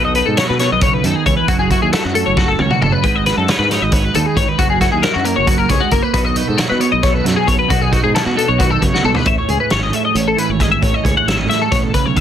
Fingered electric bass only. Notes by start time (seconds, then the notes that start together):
Already playing: B1
0.28 G#2
0.50 B2
0.72 B1
1.04 F#2
1.26 C#2
1.48 F#1
1.82 D#2
2.05 F#2
2.28 F#1
2.60 C#2
2.82 F#1
3.04 G#1
3.37 F#2
3.59 G#2
3.82 G#1
4.16 D#2
4.36 G#1
4.59 F#1
4.93 D#2
5.16 F#2
5.38 F#1
5.70 C#2
5.92 F#1
6.14 B1
6.49 G#2
6.71 B2
6.93 B1
7.26 F#2
7.48 B1
7.70 B1
8.04 G#2
8.26 B2
8.49 B1
8.82 F#2
9.04 B1
9.26 A1
9.48 C#2
9.71 G#1
10.15 A1
10.49 G#1
10.82 A1
11.05 C#2
11.28 G#1
11.72 A1
12.06 B1